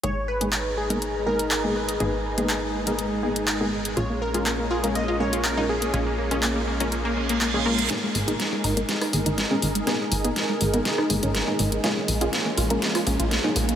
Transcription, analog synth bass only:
\new Staff \with { instrumentName = "Analog synth bass" } { \clef bass \time 4/4 \key gis \dorian \tempo 4 = 122 gis,,1 | gis,,1 | ais,,1 | ais,,1 |
r8 gis,,8 r8 gis,,8 r8 gis,,16 gis,,8 r16 gis,,8 | r8 gis,,8 r8 gis,,8 r8 gis,,16 gis,,8 r16 gis,,8 | r8 ais,,8 r8 ais,,8 r8 ais,,16 ais,,8 r16 ais,,8 | }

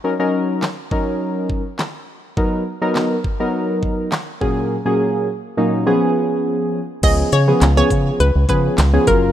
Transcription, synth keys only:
\new Staff \with { instrumentName = "Synth keys" } { \time 4/4 \key cis \mixolydian \tempo 4 = 103 <fis cis' dis' ais'>16 <fis cis' dis' ais'>8. r8 <fis cis' dis' ais'>4~ <fis cis' dis' ais'>16 r4 r16 | <fis b dis' ais'>8 r16 <fis b dis' ais'>8 r8 <fis b dis' ais'>4~ <fis b dis' ais'>16 r8 <ais, fis ais cis' gis'>8 | r16 <ais, fis ais cis' gis'>8. r8 <ais, fis ais cis' dis'>8 <eis b cis' gis'>4. r8 | <eis b cis' gis'>8 r16 <eis b cis' gis'>16 r16 <eis b cis' gis'>8. r8 <eis b cis' gis'>8 r16 <eis b cis' gis'>16 <fis cis' eis' ais'>8 | }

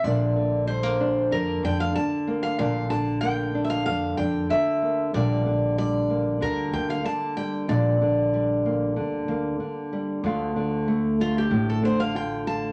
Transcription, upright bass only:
\new Staff \with { instrumentName = "Upright bass" } { \clef bass \time 4/4 \key d \minor \tempo 4 = 94 bes,,2 f,8 f,8 r4 | bes,,2 f,8 f,8 r4 | bes,,2 d,8 d,8 r4 | bes,,2 d,8 d,8 r4 |
d,2 a,,2 | }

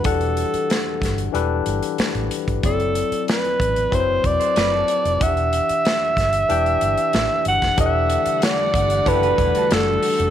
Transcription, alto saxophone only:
\new Staff \with { instrumentName = "Alto saxophone" } { \time 4/4 \key e \minor \tempo 4 = 93 a'2 r2 | a'4 b'4 c''8 d''4. | e''2.~ e''8 fis''8 | e''4 d''4 b'4 a'4 | }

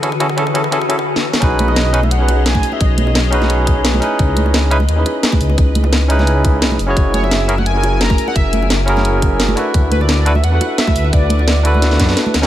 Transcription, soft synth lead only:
\new Staff \with { instrumentName = "Soft synth lead" } { \time 4/4 \key b \major \tempo 4 = 173 r1 | r8 b'16 dis''4 e''16 fis''4 gis''8. e''16 | dis''4 r2. | r1 |
r1 | r8 cis''16 e''4 fis''16 gis''4 ais''8. fis''16 | e''4 r2. | r8 b'16 d''4 e''16 fis''4 e''4 |
d''2. r4 | }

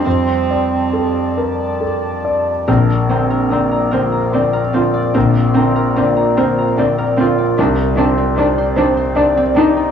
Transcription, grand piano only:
\new Staff \with { instrumentName = "Grand piano" } { \time 6/8 \key bes \major \tempo 4. = 49 f,8 d''8 a'8 bes'8 a'8 d''8 | bes,,8 c'8 d''8 c''8 d''8 f'8 | bes,,8 c'8 d''8 c''8 d''8 f'8 | c,8 c'8 d''8 c''8 d''8 ees'8 | }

